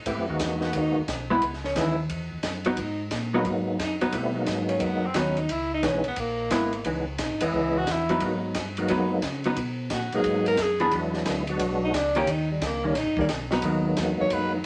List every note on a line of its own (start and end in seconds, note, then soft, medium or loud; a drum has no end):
0.06 0.17 G#2 medium
0.06 0.26 A3 medium
0.06 0.26 B3 soft
0.06 0.26 C4 medium
0.06 0.26 E4 medium
0.06 0.26 G4 medium
0.06 kick soft
0.06 ride medium
0.18 0.29 F#2 soft
0.29 0.40 D#2 medium
0.29 1.01 G#3 medium
0.29 1.01 A#3 soft
0.29 1.02 B3 soft
0.29 1.02 D#4 soft
0.29 1.02 F#4 medium
0.39 0.73 E2 medium
0.39 kick soft
0.39 snare medium
0.39 hi-hat pedal soft
0.39 ride medium
0.61 0.79 B3 medium
0.61 snare soft
0.73 0.94 D#2 medium
0.73 kick soft
0.73 ride medium
0.78 0.98 D#4 medium
0.96 1.02 D#2 soft
1.08 1.41 B1 medium
1.08 kick soft
1.08 snare medium
1.08 hi-hat pedal soft
1.08 ride medium
1.30 1.41 G#3 medium
1.30 1.41 B3 medium
1.30 1.42 E4 medium
1.42 1.75 C#2 medium
1.42 kick soft
1.42 ride medium
1.54 snare soft
1.64 1.78 C#4 medium
1.64 snare soft
1.76 2.09 D#2 medium
1.76 1.96 E3 medium
1.76 1.96 G#3 medium
1.76 1.96 B3 medium
1.76 1.96 C#4 medium
1.76 1.96 D#4 medium
1.76 1.98 E4 medium
1.76 kick soft
1.76 snare medium
1.76 hi-hat pedal soft
1.76 ride medium
2.09 2.30 E2 medium
2.09 kick soft
2.09 ride medium
2.32 2.38 E2 soft
2.43 2.77 F#2 medium
2.43 kick soft
2.43 snare medium
2.43 hi-hat pedal soft
2.43 ride medium
2.65 2.77 F#3 medium
2.65 2.77 B3 medium
2.65 2.82 B3 soft
2.65 2.77 D#4 medium
2.65 ride soft
2.77 3.10 G#2 medium
2.77 3.01 D#4 medium
2.77 kick soft
2.77 ride medium
3.11 3.44 A#2 medium
3.11 kick soft
3.11 snare medium
3.11 hi-hat pedal soft
3.11 ride medium
3.33 3.77 F#3 medium
3.33 3.45 F#3 medium
3.33 3.77 G#3 medium
3.33 3.77 A#3 medium
3.33 3.78 B3 medium
3.33 3.45 B3 medium
3.33 3.77 D#4 medium
3.33 3.45 D#4 medium
3.45 3.78 G#2 medium
3.45 kick soft
3.45 ride soft
3.70 3.75 B3 soft
3.79 4.00 F#2 medium
3.79 kick soft
3.79 snare medium
3.79 hi-hat pedal soft
3.79 ride medium
3.83 3.95 D#4 medium
4.01 4.07 F#2 soft
4.01 4.13 F#3 medium
4.01 4.13 B3 medium
4.01 4.13 D#4 medium
4.01 ride soft
4.12 4.46 B2 medium
4.12 4.33 G3 medium
4.12 4.33 A3 medium
4.12 4.33 B3 medium
4.12 4.33 C4 medium
4.12 4.34 E4 medium
4.12 kick soft
4.12 ride medium
4.34 5.08 F#3 medium
4.34 5.08 G#3 soft
4.34 5.08 A#3 soft
4.34 5.08 B3 soft
4.34 5.08 D#4 medium
4.46 4.80 G#2 medium
4.46 kick soft
4.46 snare medium
4.46 hi-hat pedal soft
4.46 ride medium
4.69 4.85 C#4 medium
4.69 ride soft
4.80 5.14 F#2 medium
4.80 5.07 B3 medium
4.80 kick soft
4.80 ride soft
5.06 5.20 C4 medium
5.14 5.48 D#2 medium
5.14 5.35 F#3 soft
5.14 5.36 B3 medium
5.14 5.36 D#4 medium
5.14 kick soft
5.14 snare medium
5.14 hi-hat pedal soft
5.14 ride medium
5.19 5.40 C#4 medium
5.37 5.53 D#4 medium
5.37 ride soft
5.49 5.82 C#2 medium
5.49 5.73 E4 medium
5.49 kick soft
5.49 ride medium
5.74 5.87 D#4 medium
5.83 6.04 B1 medium
5.83 6.03 E3 medium
5.83 6.03 G#3 medium
5.83 6.03 B3 medium
5.83 6.03 C#4 medium
5.83 6.06 C#4 medium
5.83 6.03 D#4 medium
5.83 kick soft
5.83 snare medium
5.83 hi-hat pedal soft
5.83 ride medium
6.04 6.11 B1 soft
6.04 6.21 B3 medium
6.04 ride soft
6.16 6.50 A#1 medium
6.16 6.86 A#3 medium
6.16 kick soft
6.16 ride medium
6.51 6.84 G#1 medium
6.51 6.71 G#3 medium
6.51 6.72 B3 medium
6.51 6.72 E4 medium
6.51 kick soft
6.51 snare medium
6.51 hi-hat pedal medium
6.51 ride medium
6.73 ride soft
6.84 7.18 C#2 medium
6.84 7.05 E3 medium
6.84 7.05 G#3 medium
6.84 7.05 B3 soft
6.84 7.05 C#4 soft
6.84 7.05 D#4 medium
6.84 kick soft
6.84 ride medium
7.18 7.30 B1 medium
7.18 7.45 D#4 medium
7.18 kick soft
7.18 snare medium
7.18 hi-hat pedal soft
7.18 ride medium
7.31 7.42 G#1 medium
7.41 7.53 E1 medium
7.41 7.85 E3 medium
7.41 7.85 G#3 medium
7.41 7.85 B3 medium
7.41 7.85 C#4 medium
7.41 7.79 E4 medium
7.41 7.85 D#5 medium
7.41 ride medium
7.53 7.86 C#2 medium
7.53 kick soft
7.77 7.93 F#4 loud
7.87 8.20 E2 medium
7.87 kick soft
7.87 snare medium
7.87 hi-hat pedal medium
7.87 ride medium
7.92 8.23 E4 medium
8.09 8.53 F#3 medium
8.09 8.53 B3 medium
8.09 8.54 D#4 medium
8.09 ride soft
8.20 8.54 G#2 medium
8.20 8.41 F#3 medium
8.20 8.41 G#3 medium
8.20 8.41 A#3 medium
8.20 8.41 B3 medium
8.20 8.41 D#4 medium
8.20 kick soft
8.20 ride medium
8.54 8.88 G2 medium
8.54 kick soft
8.54 snare medium
8.54 hi-hat pedal medium
8.54 ride medium
8.77 9.21 F#3 medium
8.77 9.21 G#3 medium
8.77 9.21 A#3 medium
8.77 9.21 B3 medium
8.77 9.21 D#4 medium
8.77 ride soft
8.88 9.22 F#2 medium
8.88 9.09 F#3 medium
8.88 9.10 B3 medium
8.88 9.10 D#4 medium
8.88 kick soft
8.88 ride medium
9.22 9.56 C#3 medium
9.22 kick soft
9.22 snare medium
9.22 hi-hat pedal medium
9.22 ride medium
9.44 9.56 F#3 medium
9.44 9.56 B3 medium
9.44 9.57 D#4 medium
9.44 ride soft
9.56 9.90 B2 medium
9.56 kick soft
9.56 ride medium
9.90 10.11 A#2 medium
9.90 10.12 F#4 medium
9.90 kick soft
9.90 snare medium
9.90 hi-hat pedal medium
9.90 ride medium
10.12 10.19 A#2 soft
10.12 10.57 F#3 medium
10.12 10.57 G#3 medium
10.12 10.57 A#3 medium
10.12 10.57 B3 medium
10.12 10.57 D#4 medium
10.12 10.46 G#4 medium
10.12 ride soft
10.24 10.57 G#2 medium
10.24 kick soft
10.24 ride medium
10.46 10.64 A#4 loud
10.46 ride soft
10.57 10.91 F#2 medium
10.57 kick soft
10.57 snare medium
10.57 hi-hat pedal medium
10.57 ride medium
10.62 10.94 G#4 medium
10.80 10.91 E3 medium
10.80 10.91 B3 medium
10.80 10.91 D4 medium
10.80 10.92 G#4 medium
10.80 ride soft
10.91 11.25 E2 medium
10.91 11.44 F#3 medium
10.91 11.44 G#3 medium
10.91 11.44 B3 soft
10.91 11.44 D4 soft
10.91 11.44 E4 medium
10.91 kick soft
10.91 ride medium
11.14 snare soft
11.26 11.59 D2 medium
11.26 kick soft
11.26 snare medium
11.26 hi-hat pedal soft
11.26 ride medium
11.47 11.92 F#3 medium
11.47 11.92 G#3 medium
11.47 11.92 B3 medium
11.47 11.92 D4 medium
11.47 11.92 F#4 medium
11.47 ride soft
11.59 11.93 B1 medium
11.59 kick soft
11.59 ride medium
11.84 11.97 D#4 medium
11.94 12.27 C#2 medium
11.94 12.19 D4 medium
11.94 kick soft
11.94 snare medium
11.94 hi-hat pedal medium
11.94 ride medium
12.15 12.27 D#3 medium
12.15 12.27 A#3 medium
12.15 12.27 C#4 medium
12.15 12.32 C#4 loud
12.15 12.27 G4 medium
12.15 ride soft
12.27 12.60 D#2 medium
12.27 12.51 D#4 medium
12.27 kick soft
12.27 ride medium
12.51 12.66 G3 medium
12.61 12.94 C#2 medium
12.61 kick soft
12.61 snare medium
12.61 hi-hat pedal soft
12.61 ride medium
12.65 12.88 A#3 medium
12.84 12.94 D#3 medium
12.84 12.94 G3 medium
12.84 12.94 A#3 medium
12.84 12.95 C#4 medium
12.84 13.00 C#4 medium
12.84 12.95 D#4 medium
12.95 13.06 A#1 medium
12.95 13.19 D#4 loud
12.95 kick soft
12.95 snare soft
12.95 ride medium
13.06 13.18 G1 medium
13.17 13.28 D#2 medium
13.17 13.29 D#3 medium
13.17 13.28 G3 medium
13.17 13.27 G3 medium
13.17 13.29 A#3 medium
13.17 13.29 C#4 medium
13.17 13.29 D#4 medium
13.17 kick medium
13.29 13.62 B1 medium
13.29 kick soft
13.29 snare medium
13.29 hi-hat pedal soft
13.29 ride medium
13.51 13.95 F#3 medium
13.51 13.95 B3 medium
13.51 13.96 D#4 medium
13.51 snare medium
13.62 13.96 D#2 medium
13.62 14.58 F#3 medium
13.62 14.58 G#3 medium
13.62 14.58 A#3 medium
13.62 14.58 B3 medium
13.62 14.58 D#4 medium
13.62 kick soft
13.62 ride medium
13.97 14.17 E2 medium
13.97 kick soft
13.97 snare medium
13.97 hi-hat pedal medium
13.97 ride medium
14.20 14.26 E2 soft
14.20 14.34 C#5 medium
14.30 14.63 F#2 medium
14.30 14.54 B4 loud
14.30 kick soft
14.30 ride medium
14.55 14.66 D#4 medium